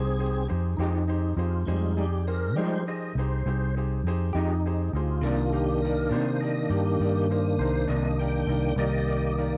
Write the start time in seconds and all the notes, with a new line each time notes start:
Already playing: C2 C4 D#4 G4 G#4 C5
0.19 D#4 G4 G#4 C5
0.48 F2 D#4 G4 G#4 C5
0.77 F2 D#4 G4 G#4 C5
0.81 F3 G#3 D#4
1.08 D#4 G4 G#4 C5
1.36 F2 D#4 F4 G4 G#4 C5
1.66 F2 G3 G#3 D#4 G4 G#4 C5
1.97 D#4 G4 G#4 D5
2.27 D#4 G4 G#4 A#4 C5
2.56 F3 G3 G#3 D#4 G4 G#4 C5
2.87 D#4 G4 G#4 C5 D#5
3.15 C2 D#4 G4 G#4
3.19 C5
3.46 C2 D#4 G4 G#4 C5
3.76 D#4 G4 G#4 C5
4.04 F2 D#4 G4 G#4
4.08 C5
4.33 F2 F3 G#3 D#4 G4 G#4
4.38 D#5
4.66 D#4 G4 G#4 C5
4.93 D2 D#4 F4 G4 G#4 C5
5.21 C2 C3 D#3 A#3 D4 D#4
5.26 G4 A#4 D5
5.52 D#4 G4 A#4 F5
5.82 D#4 G4 A#4 D5
6.09 C3 D#3 A#3 D4 D#4 G4 A#4 C5
6.40 D#4 G4 A#4 D5 D#5
6.69 G2 D#4 G4 A#4 D5
7.00 G2 D#4 G4 A#4 D5
7.30 D#4 G4 A#4 C5
7.58 C2 D#4 G4 A#4 C5
7.88 C2 C3 D#3 A#3 D4 D#4 G4 A#4 D#5
8.19 D#4 G4 A#4 D5 G5
8.47 C2 D#4 G4 A#4 D5
8.76 C2 D#3 A#3 D#4 G4 A#4 D5 D#5
9.08 D#4 G4 A#4 D5
9.38 D#4 G4 A#4 D5